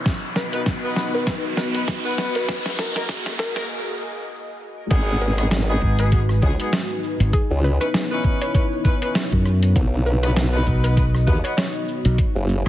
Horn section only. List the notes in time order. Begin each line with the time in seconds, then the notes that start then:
0.54 B3 D#4 F#4 B4
0.84 B3 D#4 F#4 B4
1.14 B3 D#4 F#4 B4
1.75 B3 D#4 F#4 B4
2.05 B3 D#4 F#4 B4
2.35 B3 D#4 F#4 B4
2.96 A#3 D#4 F#4 A#4
3.57 A#3 D#4 F#4 A#4
4.91 B3 D#4 F#4 G#4
5.38 B3 D#4 F#4 G#4
5.69 B3 D#4 F#4 G#4
5.99 B3 D#4 F#4 G#4
6.12 B3 D#4 F#4 G#4
6.42 B3 D#4 F#4 G#4
6.60 B3 D#4 F#4 G#4
7.81 C#4 D#4 E4 B4
8.11 C#4 D#4 E4 B4
8.42 C#4 D#4 E4 B4
8.55 C#4 D#4 E4 B4
8.85 C#4 D#4 E4 B4
9.02 C#4 D#4 E4 B4
10.23 B3 D#4 F#4 B4
10.54 B3 D#4 F#4 B4
10.84 B3 D#4 F#4 B4
10.97 B3 D#4 F#4 B4
11.27 B3 D#4 F#4 B4
11.44 B3 D#4 F#4 B4